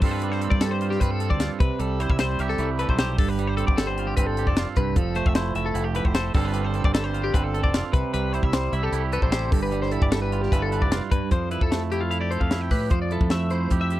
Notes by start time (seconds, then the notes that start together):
0.02 G2 G3 C4 F4 A4, kick, open hi-hat
0.06 A4
0.11 B4
0.22 G3, closed hi-hat
0.32 C5, snare
0.41 C4 A4, closed hi-hat
0.50 G2 D5, kick
0.61 G3 A4, snare, closed hi-hat
0.71 C5
0.81 F4, closed hi-hat
0.90 G4, snare
1.00 G2 C4 B4, kick, closed hi-hat
1.11 A4
1.20 A4, closed hi-hat
1.30 D2 D5, kick
1.40 F4, snare, closed hi-hat
1.59 C2 C3 B4, kick, closed hi-hat
1.79 C2 G3 A4, closed hi-hat
2.00 E4 C5, closed hi-hat
2.10 C2 E5, kick
2.19 G3 C5, snare, closed hi-hat
2.39 C2 G4 E5, closed hi-hat
2.49 A4, snare
2.58 C2 E4, closed hi-hat
2.79 A4 B4, closed hi-hat
2.89 B1 C5, kick
2.98 G4 C5, snare, closed hi-hat
3.18 G1 G2 A4, kick, open hi-hat
3.28 B4
3.39 G3, closed hi-hat
3.48 C5
3.57 C4 A4, closed hi-hat
3.67 G1 D5, kick
3.77 G3 A4, snare, closed hi-hat
3.87 C5
3.98 F4, closed hi-hat
4.07 G4
4.17 G1 C4 B4, kick, closed hi-hat
4.27 A4
4.37 G4, closed hi-hat
4.47 F1 A4 D5, kick
4.57 F4, snare, closed hi-hat
4.76 C2 G2 B4, kick, closed hi-hat
4.96 F1 F3 A4, kick, closed hi-hat
5.15 A3 C5, closed hi-hat
5.26 F1 E5, kick
5.35 E4 C5, snare, closed hi-hat
5.55 F1 A3 E5, closed hi-hat
5.66 A4
5.74 F1 E4, closed hi-hat
5.84 G4
5.94 E4 B4, closed hi-hat
6.05 F1 C5, kick
6.15 A4 C5, snare, closed hi-hat
6.34 G1 G2 G3 C4 F4 A4, kick, open hi-hat
6.45 B4
6.54 G3, closed hi-hat
6.65 C5
6.74 C4 A4, closed hi-hat
6.84 G1 D5, kick
6.94 G3 A4, snare, closed hi-hat
7.04 C5
7.14 F4, closed hi-hat
7.24 G4
7.34 G1 C4 B4, kick, closed hi-hat
7.44 A4
7.54 A4, closed hi-hat
7.64 F1 D5, kick
7.74 F4, snare, closed hi-hat
7.93 C2 C3 B4, kick, closed hi-hat
8.14 C2 G3 B4, closed hi-hat
8.33 E4 C5, closed hi-hat
8.43 C2 E5, kick
8.53 G3 C5, snare, closed hi-hat
8.73 C2 E4 E5, closed hi-hat
8.83 G4 A4
8.92 C2 E4, closed hi-hat
9.12 A4 B4, closed hi-hat
9.22 A1 C5, kick
9.32 G4 C5, snare, closed hi-hat
9.52 G1 G2 A4, kick, open hi-hat
9.63 B4
9.72 G3, closed hi-hat
9.82 C5, snare
9.91 E4 A4, closed hi-hat
10.02 G1 D5, kick
10.12 G3 A4, snare, closed hi-hat
10.22 B4
10.32 F4, closed hi-hat
10.42 G4, snare
10.52 G1 E4 B4, kick, closed hi-hat
10.62 A4
10.72 B4, closed hi-hat
10.81 F1 D5, kick
10.92 F4, snare, closed hi-hat
11.11 G2 B4, kick, closed hi-hat
11.31 F2 F3 C5, kick, closed hi-hat
11.51 E4 B4, closed hi-hat
11.61 F2 A4, kick
11.71 A3, snare, closed hi-hat
11.92 E4 G4, closed hi-hat
12.01 F4
12.11 E4 F5, closed hi-hat
12.21 G4 D5
12.31 A4 C5, closed hi-hat
12.40 F2 F5, kick
12.51 E4, snare, closed hi-hat
12.61 G5
12.71 A2 G4 B4, kick, open hi-hat
12.90 F2 F3 C5, kick, closed hi-hat
13.02 D5
13.11 E4 A4, closed hi-hat
13.21 F2, kick
13.30 A3 E5, snare, closed hi-hat
13.50 E4 C5, closed hi-hat
13.70 F2 G4, kick, closed hi-hat
13.81 E5
13.90 G4, closed hi-hat